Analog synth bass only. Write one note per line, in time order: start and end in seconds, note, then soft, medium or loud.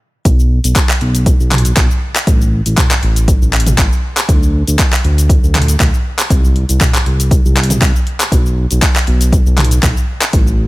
0.25 0.59 B1 loud
0.64 0.73 B1 medium
1.01 1.35 B1 medium
1.40 1.73 B1 medium
1.77 1.87 B1 medium
2.27 2.61 A1 loud
2.66 2.75 A1 medium
3.03 3.37 A1 medium
3.42 3.74 A1 loud
3.78 3.89 A1 medium
4.29 4.63 D2 loud
4.67 4.77 D2 medium
5.04 5.38 D2 medium
5.43 5.76 D2 medium
5.80 5.91 D2 medium
6.30 6.64 C2 loud
6.69 6.78 C2 medium
7.06 7.40 C2 medium
7.45 7.78 C2 loud
7.81 7.92 C2 medium
8.32 8.66 B1 loud
8.71 8.80 B1 medium
9.08 9.42 B1 medium
9.46 9.79 B1 loud
9.83 9.94 B1 medium
10.33 10.68 A1 loud